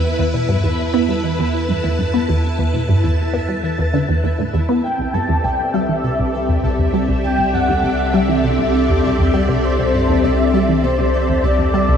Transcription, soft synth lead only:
X:1
M:4/4
L:1/8
Q:1/4=100
K:C
V:1 name="Soft synth lead"
z8 | z8 | g a g e3 z2 | g ^f2 e4 z |
c2 e2 c2 d2 |]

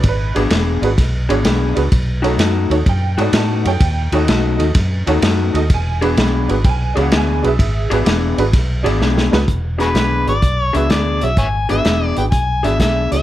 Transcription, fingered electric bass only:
X:1
M:4/4
L:1/8
Q:"Swing" 1/4=127
K:Emix
V:1 name="Fingered electric bass" clef=bass
G,,, G,,, E,,, G,,, B,,, G,,, B,,, C,, | B,,,2 F,, ^D,, F,, G,, A,, F,, | ^D,, D,, B,,, D,, F,, D,, F,, D,, | E,,,2 B,,, G,,, B,,, C,, D,, B,,, |
G,,, G,,, E,,, G,,, B,,, G,,, B,,, C,, | E,,,2 B,,, G,,, B,,, C,, D,, B,,, | G,,, G,,, E,,, G,,, B,,, G,,, B,,, C,, |]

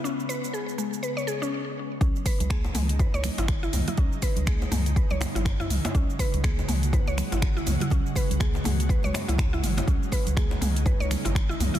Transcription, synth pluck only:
X:1
M:4/4
L:1/16
Q:"Swing 16ths" 1/4=122
K:C#m
V:1 name="Synth pluck"
C z B z G z G, z B c G C z4 | C z B z G z G, z B c z E z E z E | C z B z G z G, z B c z E z E z E | C z B z G z G, z B c z E z E z E |
C z B z G z G, z B c z E z E z E | C z B z G z G, z B c z E z E z E |]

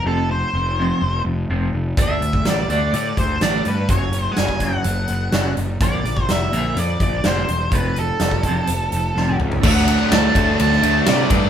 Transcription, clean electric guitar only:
X:1
M:4/4
L:1/8
Q:1/4=125
K:Dmix
V:1 name="Clean electric guitar" clef=bass
[=F,,C,=F,] [F,,C,] [F,,C,] [F,,C,F,] z [F,,C,] [F,,C,F,] C, | [D,A,D] [D,A,] [D,A,] [D,A,D] [D,A,] [D,A,] [D,A,D] [D,A,] | [F,,^C,F,] [F,,C,] [F,,C,] [F,,C,F,] [F,,C,] [F,,C,] [F,,C,F,] [F,,C,] | [_B,,D,_B,] [B,,D,] [B,,D,] [B,,D,B,] [B,,D,] [B,,D,] [B,,D,B,] [B,,D,] |
[=F,,C,=F,] [F,,C,] [F,,C,] [F,,C,F,] [F,,C,] [F,,C,] [F,,C,F,] [F,,C,] | z8 |]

